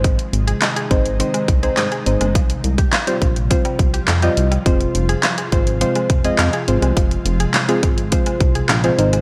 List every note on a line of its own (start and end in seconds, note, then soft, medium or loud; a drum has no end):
0.00 0.18 G#1 loud
0.00 9.21 C3 medium
0.00 2.33 D#3 medium
0.00 0.68 G#3 medium
0.00 2.31 G#3 medium
0.00 0.68 C4 medium
0.00 0.68 D#4 medium
0.00 2.33 D#4 medium
0.00 0.68 C5 loud
0.04 0.15 D#3 medium
0.04 kick loud
0.04 closed hi-hat medium
0.19 closed hi-hat medium
0.33 0.54 G#1 medium
0.33 closed hi-hat medium
0.47 0.58 G#4 medium
0.47 closed hi-hat medium
0.62 0.72 D#5 medium
0.62 snare medium
0.62 clap loud
0.62 closed hi-hat medium
0.76 0.87 G#4 medium
0.76 closed hi-hat medium
0.90 1.22 G#1 loud
0.90 1.10 G#3 loud
0.90 1.10 C4 medium
0.90 1.10 D#4 medium
0.90 1.10 C5 loud
0.90 kick medium
0.90 closed hi-hat medium
1.06 closed hi-hat soft
1.19 1.30 D#3 medium
1.19 1.49 G#3 medium
1.19 1.49 C4 medium
1.19 1.49 D#4 medium
1.19 1.49 C5 loud
1.19 closed hi-hat medium
1.34 1.45 G#3 medium
1.34 closed hi-hat medium
1.48 1.70 C2 medium
1.48 kick loud
1.48 closed hi-hat medium
1.63 1.92 G#3 medium
1.63 1.92 C4 medium
1.63 1.92 D#4 medium
1.63 1.73 G#4 medium
1.63 1.92 C5 loud
1.63 closed hi-hat medium
1.77 1.88 G#2 loud
1.77 1.88 D#5 loud
1.77 snare medium
1.77 clap loud
1.77 closed hi-hat medium
1.92 2.02 G#4 medium
1.92 closed hi-hat soft
2.06 2.17 G#1 medium
2.06 2.35 G#3 medium
2.06 2.35 C4 medium
2.06 2.35 D#4 medium
2.06 2.35 C5 medium
2.06 closed hi-hat medium
2.21 2.37 G1 loud
2.21 2.31 G#3 medium
2.21 closed hi-hat medium
2.35 2.56 C2 loud
2.35 2.46 F3 medium
2.35 8.95 F3 medium
2.35 4.64 G3 medium
2.35 8.95 F4 medium
2.35 kick loud
2.35 closed hi-hat medium
2.50 closed hi-hat medium
2.64 2.85 C2 medium
2.64 closed hi-hat medium
2.78 2.89 G4 medium
2.78 kick medium
2.78 closed hi-hat medium
2.93 3.03 F5 medium
2.93 snare medium
2.93 clap loud
2.93 closed hi-hat medium
3.07 3.36 G3 medium
3.07 3.36 C4 medium
3.07 3.36 F4 medium
3.07 3.18 G4 medium
3.07 3.36 C5 loud
3.07 closed hi-hat medium
3.22 3.53 A#1 loud
3.22 kick medium
3.22 closed hi-hat medium
3.36 closed hi-hat soft
3.50 3.61 F3 medium
3.50 3.99 G3 medium
3.50 3.99 C4 medium
3.50 3.99 F4 medium
3.50 3.99 C5 loud
3.50 kick medium
3.50 closed hi-hat medium
3.65 3.75 G3 medium
3.65 closed hi-hat medium
3.79 4.00 C2 medium
3.79 kick loud
3.79 closed hi-hat medium
3.94 4.04 G4 medium
3.94 closed hi-hat medium
4.08 4.29 F2 medium
4.08 4.19 F5 loud
4.08 snare medium
4.08 clap loud
4.08 closed hi-hat medium
4.22 4.52 G3 medium
4.22 4.52 C4 medium
4.22 4.52 F4 medium
4.22 4.33 G4 medium
4.22 4.52 D#5 loud
4.22 closed hi-hat soft
4.37 4.58 C2 medium
4.37 closed hi-hat medium
4.52 4.62 G3 medium
4.52 closed hi-hat medium
4.66 4.87 F1 loud
4.66 4.76 F3 medium
4.66 5.24 G#3 medium
4.66 9.21 G#3 medium
4.66 5.24 C4 medium
4.66 5.24 F4 medium
4.66 5.24 C5 loud
4.66 kick loud
4.66 closed hi-hat medium
4.81 closed hi-hat medium
4.95 5.16 F1 loud
4.95 closed hi-hat medium
5.09 5.20 G#4 loud
5.09 closed hi-hat medium
5.23 5.34 F5 medium
5.23 snare medium
5.23 clap loud
5.23 closed hi-hat medium
5.38 5.48 G#4 medium
5.38 closed hi-hat medium
5.52 5.84 G#1 medium
5.52 5.72 G#3 medium
5.52 5.72 C4 medium
5.52 5.72 F4 medium
5.52 5.72 C5 loud
5.52 kick medium
5.52 closed hi-hat medium
5.67 closed hi-hat soft
5.81 5.92 F3 medium
5.81 6.10 G#3 medium
5.81 6.10 C4 medium
5.81 6.10 F4 medium
5.81 6.10 C5 loud
5.81 closed hi-hat medium
5.95 6.06 G#3 medium
5.95 closed hi-hat medium
6.10 6.31 F1 medium
6.10 kick loud
6.10 closed hi-hat medium
6.24 6.54 G#3 loud
6.24 6.54 C4 medium
6.24 6.54 F4 medium
6.24 6.35 G#4 medium
6.24 6.54 D#5 loud
6.24 closed hi-hat medium
6.39 6.49 F2 loud
6.39 6.50 F5 loud
6.39 snare medium
6.39 clap loud
6.39 closed hi-hat medium
6.53 6.64 G#4 medium
6.53 closed hi-hat soft
6.68 6.78 G#1 medium
6.68 7.36 G#3 medium
6.68 7.36 C4 medium
6.68 7.36 F4 medium
6.68 7.36 C5 medium
6.68 closed hi-hat medium
6.82 6.93 C2 medium
6.82 6.93 G#3 medium
6.82 closed hi-hat medium
6.97 7.18 F1 loud
6.97 7.07 F3 medium
6.97 kick loud
6.97 closed hi-hat medium
7.11 closed hi-hat medium
7.25 7.46 F1 loud
7.25 closed hi-hat medium
7.40 7.50 G#4 medium
7.40 closed hi-hat medium
7.54 7.65 F5 medium
7.54 snare medium
7.54 clap loud
7.54 closed hi-hat medium
7.68 7.98 G#3 loud
7.68 7.98 C4 medium
7.68 7.98 F4 medium
7.68 7.98 G#4 loud
7.68 7.79 G#4 medium
7.68 closed hi-hat medium
7.83 8.15 G#1 loud
7.83 kick loud
7.83 closed hi-hat medium
7.98 closed hi-hat medium
8.11 8.22 F3 medium
8.11 8.60 G#3 loud
8.11 8.60 C4 medium
8.11 8.60 F4 medium
8.11 8.61 C5 loud
8.11 kick loud
8.11 closed hi-hat medium
8.26 8.37 G#3 medium
8.26 closed hi-hat medium
8.40 8.62 C2 loud
8.40 kick loud
8.40 closed hi-hat medium
8.55 8.66 G#4 medium
8.55 closed hi-hat medium
8.69 8.91 A#1 loud
8.69 8.80 F5 loud
8.69 snare medium
8.69 clap loud
8.69 closed hi-hat medium
8.84 8.97 G#3 medium
8.84 8.97 C4 medium
8.84 8.98 F4 medium
8.84 8.95 G#4 medium
8.84 8.97 C5 loud
8.84 closed hi-hat soft
8.98 9.21 G#1 loud
8.98 9.21 D#3 medium
8.98 9.21 G#3 medium
8.98 9.21 C4 medium
8.98 9.21 D#4 medium
8.98 9.21 C5 loud
8.98 closed hi-hat medium
9.13 9.21 G#3 medium
9.13 closed hi-hat medium